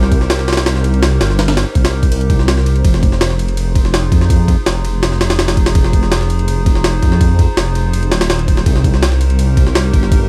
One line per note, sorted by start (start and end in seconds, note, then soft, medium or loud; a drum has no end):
0.00 1.19 C2 loud
0.00 2.80 D#4 medium
0.00 2.80 G4 medium
0.00 2.80 A#4 medium
0.00 2.80 C5 medium
0.00 snare soft
0.12 kick medium
0.12 ride medium
0.21 snare soft
0.30 snare loud
0.30 ride medium
0.39 snare soft
0.48 snare medium
0.48 ride medium
0.53 snare medium
0.53 ride medium
0.57 snare loud
0.57 ride medium
0.66 snare loud
0.66 ride medium
0.75 snare soft
0.84 ride medium
0.94 ride soft
1.02 snare loud
1.02 ride medium
1.21 1.65 G1 loud
1.21 snare loud
1.21 ride medium
1.30 snare soft
1.39 snare loud
1.39 ride medium
1.48 snare loud
1.48 ride medium
1.57 snare loud
1.57 ride medium
1.75 2.83 C2 medium
1.75 kick medium
1.75 ride medium
1.85 snare loud
1.85 ride medium
2.03 kick medium
2.03 ride medium
2.12 ride medium
2.21 ride soft
2.30 kick medium
2.30 ride medium
2.39 snare soft
2.48 snare loud
2.48 ride medium
2.58 snare soft
2.66 ride medium
2.76 ride soft
2.84 4.10 F1 loud
2.84 10.29 D#4 medium
2.84 8.62 F4 medium
2.84 8.62 G#4 medium
2.84 10.29 C5 medium
2.84 kick loud
2.84 ride medium
2.94 snare soft
3.03 kick medium
3.03 ride medium
3.12 snare soft
3.21 snare loud
3.21 ride medium
3.30 snare soft
3.39 ride medium
3.48 ride soft
3.57 ride medium
3.75 kick medium
3.75 ride medium
3.85 snare soft
3.94 snare loud
3.94 ride medium
4.12 4.56 F2 loud
4.12 kick loud
4.12 ride medium
4.21 snare soft
4.30 kick loud
4.30 ride medium
4.48 kick medium
4.48 ride medium
4.66 5.74 F1 medium
4.66 snare loud
4.66 ride medium
4.85 ride medium
5.03 snare loud
5.03 ride medium
5.12 snare soft
5.21 snare loud
5.21 ride medium
5.30 snare loud
5.30 ride medium
5.39 snare loud
5.39 ride medium
5.48 snare loud
5.48 ride medium
5.57 kick loud
5.57 ride medium
5.66 snare loud
5.66 ride medium
5.75 7.01 F1 loud
5.75 kick loud
5.75 ride medium
5.84 snare soft
5.93 kick medium
5.93 ride medium
6.03 snare soft
6.12 snare loud
6.12 ride medium
6.21 snare soft
6.30 ride medium
6.39 ride soft
6.48 ride medium
6.66 kick loud
6.66 ride medium
6.75 snare soft
6.84 snare loud
6.84 ride medium
7.02 7.47 F2 loud
7.02 kick loud
7.02 ride medium
7.12 snare soft
7.21 kick loud
7.21 ride medium
7.39 kick medium
7.39 ride medium
7.57 8.13 F1 medium
7.57 snare loud
7.57 ride medium
7.75 ride medium
7.93 ride medium
8.03 ride soft
8.12 8.65 D#1 medium
8.12 snare loud
8.12 ride medium
8.21 snare loud
8.21 ride medium
8.30 snare loud
8.30 ride medium
8.39 ride soft
8.48 kick medium
8.48 ride medium
8.57 snare medium
8.66 9.92 C2 loud
8.66 10.29 G4 medium
8.66 10.29 A#4 medium
8.66 kick loud
8.66 ride medium
8.76 snare soft
8.84 kick medium
8.84 ride medium
8.94 snare soft
9.03 snare loud
9.03 ride medium
9.12 snare soft
9.21 ride medium
9.30 ride soft
9.39 ride medium
9.57 kick loud
9.57 ride medium
9.67 snare soft
9.75 snare loud
9.75 ride loud
9.93 10.29 G1 loud
9.93 kick loud
9.93 ride medium
10.03 snare soft
10.12 kick loud
10.12 ride medium